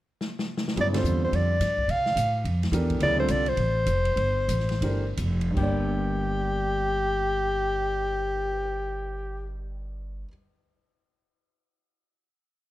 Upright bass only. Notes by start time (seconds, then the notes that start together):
0.76 G2
1.04 E2
1.32 F2
1.60 G2
1.88 C3
2.16 A2
2.44 F2
2.72 E2
3.00 D2
3.29 C2
3.57 A1
3.86 F1
4.16 G1
4.48 A1
4.81 G1
5.18 F1
5.57 G1